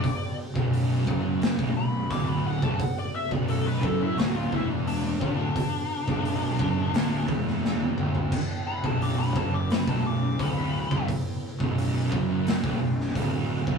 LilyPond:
<<
  \new Staff \with { instrumentName = "Lead electric guitar" } { \time 4/4 \key b \minor \tempo 4 = 87 d''8 r2 b''8 d'''16 b''16 fis''16 a''16 | fis''16 d''16 e''16 d''16 a'16 b'16 a'16 e'16 fis'16 eis'16 e'16 r16 d'8 d'8~ | d'2~ d'8 r4. | r8 b''16 a''16 d'''16 b''16 a''16 d'''16 b''16 a''16 d'''8 b''4 |
r1 | }
  \new Staff \with { instrumentName = "Tonewheel organ" } { \time 4/4 \key b \minor << { <b b'>1~ | <b b'>1~ | <b b'>1~ | <b b'>1~ |
<b b'>1 | } \\ { fis'1~ | fis'1~ | fis'1 | e'1~ |
e'1 | } >> }
  \new Staff \with { instrumentName = "Distorted electric guitar" } { \clef bass \time 4/4 \key b \minor r8. b,,8. fis,8. b,,16 b,,8 d,8. b,,16 | r8. b,,8. fis,8 d,8 e,4 d,8 | r8. b,,8. fis,8 d,8 e,4 d,8 | r8. b,,8. fis,8. b,,16 b,,8 d,8. b,,16 |
r8. b,,8. fis,8. b,,16 b,,8 d,8. b,,16 | }
  \new Staff \with { instrumentName = "Distorted electric guitar" } { \clef bass \time 4/4 \key b \minor r8. b,,8. fis,8. b,,16 b,,8 d,8. b,,16 | r8. b,,8. fis,8 d,8 e,4 d,8 | r8. b,,8. fis,8 d,8 e,4 d,8 | r8. b,,8. fis,8. b,,16 b,,8 d,8. b,,16 |
r8. b,,8. fis,8. b,,16 b,,8 d,8. b,,16 | }
  \new Staff \with { instrumentName = "Fingered electric bass" } { \clef bass \time 4/4 \key b \minor r8. b,,,8. fis,,8. b,,,16 b,,,8 d,,8. b,,,16 | r8. b,,,8. fis,,8 d,,8 e,,4 d,,8 | r8. b,,,8. fis,,8 d,,8 e,,4 d,,8 | r8. b,,,8. fis,,8. b,,,16 b,,,8 d,,8. b,,,16 |
r8. b,,,8. fis,,8. b,,,16 b,,,8 d,,8. b,,,16 | }
  \new DrumStaff \with { instrumentName = "Drums" } \drummode { \time 4/4 <hho bd>8. bd16 hho8 bd8 <hho sn>16 bd8. <hho bd>8. bd16 | <hho bd>8. bd16 hho8 bd8 <hho sn>8 bd8 hho8 bd8 | <hho bd>8. bd16 hho8 bd8 <hho sn>8 bd16 sn16 sn16 tommh16 toml16 tomfh16 | <cymc bd>8. bd16 hho8 bd8 <hho sn>16 bd8. <hho bd>8. bd16 |
<hho bd>8. bd16 hho8 bd8 <hho sn>16 bd8 sn16 <hho bd>8. bd16 | }
>>